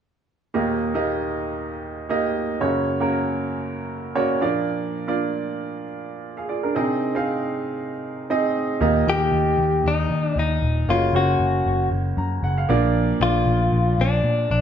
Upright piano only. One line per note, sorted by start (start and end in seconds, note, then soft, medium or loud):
0.54 2.57 D#2 soft
0.54 2.57 A#2 soft
0.54 0.82 A#3 medium
0.54 0.82 D#4 medium
0.54 0.82 G4 soft
0.54 0.82 D#5 medium
0.94 1.69 A#3 medium
0.94 1.69 D#4 medium
0.94 1.69 G4 medium
0.94 1.69 D#5 medium
2.09 2.48 A#3 medium
2.09 2.48 D#4 medium
2.09 2.48 G4 medium
2.09 2.49 D#5 medium
2.60 4.38 F#2 soft
2.60 4.38 C#3 soft
2.60 2.89 A#3 medium
2.60 2.89 C#4 soft
2.60 2.89 F#4 medium
2.60 2.89 C#5 medium
3.00 3.76 A#3 medium
3.00 3.76 C#4 medium
3.00 3.76 F#4 medium
3.00 3.76 A#4 medium
4.15 4.40 A#3 medium
4.15 4.41 C#4 medium
4.15 4.41 F#4 medium
4.15 4.41 C#5 medium
4.15 4.41 D5 medium
4.41 6.44 A#2 medium
4.41 6.45 F3 soft
4.41 4.93 A#3 medium
4.41 4.93 D4 medium
4.41 4.93 F4 medium
4.41 4.94 D5 medium
5.07 5.83 A#3 medium
5.07 5.83 D4 medium
5.07 5.83 F4 medium
5.07 5.83 D5 medium
6.37 6.48 G#4 soft
6.37 6.48 F5 soft
6.49 6.63 F4 soft
6.49 6.62 D5 soft
6.63 6.88 D4 soft
6.63 6.88 A#4 medium
6.75 8.78 C3 soft
6.75 7.03 C4 medium
6.75 7.03 D#4 medium
6.75 7.04 G#4 medium
6.75 7.04 D#5 medium
7.15 7.90 C4 medium
7.15 7.90 D#4 medium
7.15 7.90 G#4 medium
7.15 7.90 F5 medium
8.30 8.69 C4 medium
8.30 8.69 D#4 medium
8.30 8.69 G#4 medium
8.30 8.69 D#5 medium
8.81 9.55 A#2 medium
8.81 9.01 A#3 medium
8.81 9.01 D#4 medium
8.81 9.01 G4 medium
8.81 9.01 D#5 medium
9.07 9.83 A#3 medium
9.07 9.83 D#4 medium
9.07 9.83 G4 soft
9.07 9.83 D#5 medium
10.89 11.62 C#3 soft
10.89 11.08 A#3 medium
10.89 11.08 C#4 medium
10.89 11.08 F#4 soft
10.89 11.09 C#5 medium
11.14 11.90 A#3 medium
11.14 11.90 C#4 medium
11.14 11.90 F#4 soft
11.14 11.90 C5 medium
12.18 12.42 A#5 medium
12.44 12.57 F#5 medium
12.58 12.92 F5 medium
12.69 13.43 A#2 medium
12.69 13.43 F3 medium
12.69 13.12 A#3 medium
12.69 13.12 D4 medium
12.69 13.12 F4 medium
12.69 13.12 D5 medium
13.21 13.97 A#3 medium
13.21 13.97 D4 soft
13.21 13.97 F4 soft
13.21 13.97 D5 medium